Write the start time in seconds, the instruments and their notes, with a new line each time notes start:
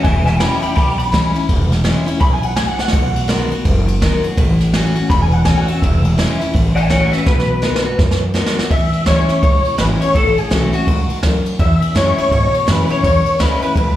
0.03 upright bass E1, steel-string acoustic guitar E2, clean electric guitar E5 G#5, kick, ride
0.25 clean electric guitar E5 G#5, snare, ride
0.39 steel-string acoustic guitar E3 G#3 C#4 E4, clean electric guitar G5 B5, snare, ride
0.62 steel-string acoustic guitar C#4 E4, clean electric guitar G5 B5, muted upright bass stroke, ride
0.76 upright bass B1, steel-string acoustic guitar B2, clean electric guitar G5 B5, kick, snare, ride
0.98 clean electric guitar B5, ride
1.12 steel-string acoustic guitar E3 G#3 C#4 E4, kick, snare, ride
1.34 steel-string acoustic guitar C#4 E4, muted upright bass stroke, ride
1.49 upright bass E1, steel-string acoustic guitar E2, kick, ride
1.72 snare, ride
1.84 steel-string acoustic guitar E3 G#3 C#4 E4, snare, ride
2.06 steel-string acoustic guitar C#4 E4, muted upright bass stroke, ride
2.20 upright bass B1, steel-string acoustic guitar G#2, clean electric guitar B5, kick, ride
2.33 clean electric guitar G#5
2.43 clean electric guitar F#5, ride
2.56 steel-string acoustic guitar A2, clean electric guitar G#5, snare, ride
2.68 clean electric guitar F#5
2.79 clean electric guitar F#5, muted upright bass stroke, snare
2.88 snare
2.93 upright bass B1, steel-string acoustic guitar B2, kick, ride
3.16 ride
3.28 steel-string acoustic guitar D#3 G#3 B3 F#4, snare, ride
3.50 steel-string acoustic guitar B3 F#4, muted upright bass stroke, ride
3.65 upright bass F#1, steel-string acoustic guitar F#2, kick, ride
3.88 ride
4.02 steel-string acoustic guitar D#3 G#3 B3 F#4, kick, snare, ride
4.24 steel-string acoustic guitar B3 F#4, muted upright bass stroke, ride
4.37 upright bass A1, steel-string acoustic guitar A2, kick, ride
4.60 snare, ride
4.74 steel-string acoustic guitar E3 A3 C#4 F#4, snare, ride
4.95 steel-string acoustic guitar C#4 F#4, muted upright bass stroke, ride
5.10 upright bass E1, steel-string acoustic guitar E2, clean electric guitar B5, kick, snare, ride
5.22 clean electric guitar G#5
5.32 clean electric guitar F#5, ride
5.45 steel-string acoustic guitar E3 A3 C#4 F#4, clean electric guitar G#5, kick, snare, ride
5.57 clean electric guitar F#5
5.68 steel-string acoustic guitar C#4 F#4, clean electric guitar E5, muted upright bass stroke, ride
5.82 upright bass E1, steel-string acoustic guitar E2, kick, ride
6.04 ride
6.18 steel-string acoustic guitar E3 G#3 C#4 E4, snare, ride
6.39 steel-string acoustic guitar C#4 E4, muted upright bass stroke, snare, ride
6.54 upright bass A1, steel-string acoustic guitar A2, kick, ride
6.75 clean electric guitar E5 G#5, ride
6.90 steel-string acoustic guitar E3 A3 C#4 F#4, clean electric guitar C#5 F#5, kick, snare, ride
7.11 steel-string acoustic guitar C#4 F#4, clean electric guitar B4 E5, muted upright bass stroke, snare, ride
7.26 upright bass B1, steel-string acoustic guitar B2, clean electric guitar B4, kick, snare
7.40 snare
7.62 steel-string acoustic guitar D#3 G#3 B3 F#4, snare
7.76 snare
7.85 steel-string acoustic guitar B3 F#4, muted upright bass stroke
7.99 steel-string acoustic guitar F#2, upright bass F#2, kick, snare
8.11 snare
8.34 steel-string acoustic guitar D#3 G#3 B3 F#4, snare
8.46 snare
8.57 steel-string acoustic guitar B3 F#4, muted upright bass stroke, snare
8.70 upright bass E2, steel-string acoustic guitar E2, clean electric guitar E5, kick, ride
8.93 muted upright bass stroke, ride
9.06 upright bass D2, steel-string acoustic guitar E3 G#3 C#4 E4, clean electric guitar C#5, snare, ride
9.29 steel-string acoustic guitar C#4 E4, muted upright bass stroke, snare, ride
9.43 upright bass C#2, steel-string acoustic guitar B2, clean electric guitar C#5, kick, ride
9.65 muted upright bass stroke, ride
9.78 upright bass G#1, steel-string acoustic guitar E3 G#3 C#4 E4, clean electric guitar B4, snare, ride
10.00 steel-string acoustic guitar C#4 E4, clean electric guitar C#5, muted upright bass stroke, ride
10.15 upright bass A1, steel-string acoustic guitar A2, clean electric guitar A4, kick, ride
10.37 clean electric guitar G#4, muted upright bass stroke, ride
10.50 upright bass B1, steel-string acoustic guitar E3 A3 C#4 F#4, clean electric guitar F#4, snare, ride
10.73 steel-string acoustic guitar C#4 F#4, clean electric guitar F#4, muted upright bass stroke, ride
10.87 upright bass C#2, steel-string acoustic guitar G#2, kick, ride
11.10 muted upright bass stroke, ride
11.23 upright bass D2, steel-string acoustic guitar F#2, snare, ride
11.45 muted upright bass stroke, ride
11.59 steel-string acoustic guitar E2, upright bass E2, clean electric guitar E5, kick, ride
11.82 muted upright bass stroke, ride
11.95 upright bass F#2, steel-string acoustic guitar E3 G#3 C#4 E4, clean electric guitar C#5, snare, ride
12.18 steel-string acoustic guitar C#4 E4, clean electric guitar C#5, muted upright bass stroke, ride
12.31 upright bass G#2, clean electric guitar C#5, kick, ride
12.54 muted upright bass stroke, ride
12.67 upright bass F#2, steel-string acoustic guitar E3 G#3 C#4 E4, clean electric guitar B4, snare, ride
12.90 steel-string acoustic guitar C#4 E4, clean electric guitar C#5, muted upright bass stroke, ride
13.04 upright bass E2, steel-string acoustic guitar E2, clean electric guitar C#5, kick, ride
13.26 muted upright bass stroke, ride
13.39 upright bass D2, steel-string acoustic guitar E3 G#3 C#4 E4, clean electric guitar B4, snare, ride
13.62 steel-string acoustic guitar C#4 E4, clean electric guitar B4, muted upright bass stroke, ride
13.75 upright bass C#2, steel-string acoustic guitar B2, kick, ride